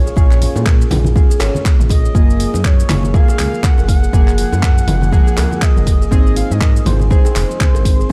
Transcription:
Already playing: synth keys C#4 F4 G#4, analog synth lead C#5
0.06 kalimba G#4, shaker
0.16 analog synth bass A#1, kalimba A#3, synth keys C#4 F4 G#4, analog synth lead C#5, kick, muted conga, low conga, shaker
0.31 clap, shaker
0.41 kalimba F4, open hi-hat, muted conga, low conga, shaker
0.56 analog synth bass A#2, high bongo, low bongo, shaker
0.66 kalimba A#4, kick, clap, muted conga, shaker
0.81 shaker
0.91 analog synth bass A#1, kalimba F4, open hi-hat, mid tom, low bongo, high conga, low conga, shaker
1.05 muted conga, high conga, shaker
1.16 kalimba G#3, synth keys C#4 F4 G#4, kick, high conga, shaker
1.30 kalimba G#4, muted conga, shaker
1.40 analog synth bass G#1, synth keys C#4 F4 C#5, kalimba C#4, clap, open hi-hat, high bongo, shaker
1.55 muted conga, high conga, shaker
1.65 kalimba A#3, kick, clap, shaker
1.80 analog synth bass A#1, mid tom, shaker
1.89 kalimba G#4, analog synth lead D#5, kick, open hi-hat, high bongo, muted conga, shaker
2.05 kalimba F3, shaker
2.15 analog synth bass F#1, synth keys A#3 F4 G#4, kalimba A#3, kick, muted conga, low conga, shaker
2.30 shaker
2.40 kalimba F4, open hi-hat, muted conga, shaker
2.54 analog synth bass F#2, low bongo, shaker
2.64 analog synth lead C#5, kick, clap, muted conga, shaker
2.80 shaker
2.89 analog synth bass F#1, kalimba F4, clap, open hi-hat, mid tom, low bongo, high conga, low conga, shaker
3.03 muted conga, high conga, shaker
3.14 kalimba G#3, synth keys A#3 F4 G#4, analog synth lead F5, kick, low bongo, shaker
3.28 kalimba G#4, high bongo, muted conga, shaker
3.39 analog synth bass C#2, analog synth lead F5, clap, open hi-hat, high conga, shaker
3.53 kalimba F3, muted conga, shaker
3.63 analog synth lead F#5, kick, clap, high conga, shaker
3.78 analog synth bass F#1, kalimba A#4, high bongo, shaker
3.88 analog synth lead F#5, kick, open hi-hat, low bongo, muted conga, shaker
4.03 kalimba G#4, shaker
4.13 analog synth bass F#1, synth keys F3 A#3 G#4, kalimba A#3, kick, muted conga, low conga, shaker
4.28 clap, shaker
4.38 kalimba F4, open hi-hat, muted conga, shaker
4.52 analog synth bass F#2, high bongo, low bongo, shaker
4.62 kalimba A#4, kick, clap, muted conga, shaker
4.78 shaker
4.87 analog synth bass F#1, kalimba F4, open hi-hat, mid tom, low bongo, high conga, low conga, shaker
5.01 muted conga, high conga, shaker
5.12 synth keys F3 A#3 G#4, kalimba G#3, kick, high conga, shaker
5.26 kalimba G#4, muted conga, shaker
5.37 analog synth bass C#2, clap, open hi-hat, high bongo, shaker
5.51 kalimba F3, muted conga, high conga, shaker
5.62 analog synth lead D#5, kick, clap, shaker
5.76 analog synth bass F#1, kalimba A#4, mid tom, shaker
5.86 kick, open hi-hat, high bongo, muted conga, shaker
6.01 kalimba G#4, shaker
6.11 analog synth bass G#1, kalimba A#3, synth keys C4 D#4 G#4, analog synth lead D#5, kick, muted conga, low conga, shaker
6.27 shaker
6.36 kalimba F4, analog synth lead F5, open hi-hat, muted conga, shaker
6.51 analog synth bass G#2, analog synth lead D#5, low bongo, shaker
6.61 kalimba A#4, kick, clap, muted conga, shaker
6.76 shaker
6.85 analog synth bass G#1, kalimba F4, analog synth lead C5, open hi-hat, mid tom, low bongo, high conga, low conga, shaker
7.00 muted conga, high conga, shaker
7.10 kalimba G#3, synth keys C4 D#4 G#4, analog synth lead C5, kick, low bongo, shaker
7.25 kalimba G#4, high bongo, muted conga, shaker
7.35 analog synth bass F1, clap, open hi-hat, high conga, shaker
7.49 kalimba F3, muted conga, shaker
7.60 kick, clap, high conga, shaker
7.75 analog synth bass G#1, kalimba A#4, high bongo, shaker
7.85 kick, open hi-hat, low bongo, muted conga, shaker
7.99 kalimba G#4, shaker

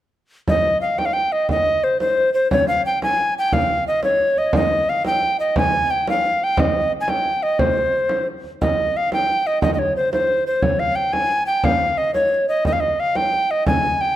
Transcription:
0.48 recorder D#5, frame drum
0.81 recorder F5
0.98 recorder G5, frame drum
1.05 recorder F5
1.13 recorder G5, frame drum
1.32 recorder D#5
1.49 recorder D#5, frame drum
1.84 recorder C5
2.00 recorder C5, frame drum
2.18 frame drum
2.34 recorder C5
2.51 recorder C#5, frame drum
2.68 recorder F5
2.86 recorder G5
3.02 recorder G#5, frame drum
3.19 frame drum
3.38 recorder G5
3.52 recorder F5, frame drum
3.70 frame drum
3.87 recorder D#5, frame drum
4.03 recorder C#5, frame drum
4.20 frame drum
4.36 recorder D#5, frame drum
4.53 recorder D#5, frame drum
4.89 recorder F5
5.05 recorder G5, frame drum
5.22 frame drum
5.40 recorder D#5
5.56 recorder G#5, frame drum
5.90 recorder G5
6.08 recorder F5, frame drum
6.24 frame drum
6.44 recorder G5
6.57 recorder D#5, frame drum
7.01 recorder G#5
7.08 recorder G5, frame drum
7.25 frame drum
7.43 recorder D#5
7.59 recorder C5, frame drum
7.77 frame drum
7.93 frame drum
8.09 frame drum
8.44 frame drum
8.62 recorder D#5, frame drum
8.97 recorder F5
9.12 recorder G5, frame drum
9.29 frame drum
9.47 recorder D#5
9.62 recorder D#5, frame drum
9.74 recorder D#5
9.79 recorder C#5
9.96 recorder C5
10.13 recorder C5, frame drum
10.29 frame drum
10.47 recorder C5
10.62 recorder C#5, frame drum
10.79 recorder F5
10.96 recorder G5
11.13 recorder G#5, frame drum
11.30 frame drum
11.46 recorder G5
11.64 recorder F5, frame drum
11.98 recorder D#5, frame drum
12.14 recorder C#5, frame drum
12.49 recorder D#5
12.65 recorder D#5, frame drum
12.73 recorder F5
12.80 recorder D#5
13.00 recorder F5
13.15 recorder G5, frame drum
13.33 frame drum
13.51 recorder D#5
13.67 recorder G#5, frame drum
14.01 recorder G5

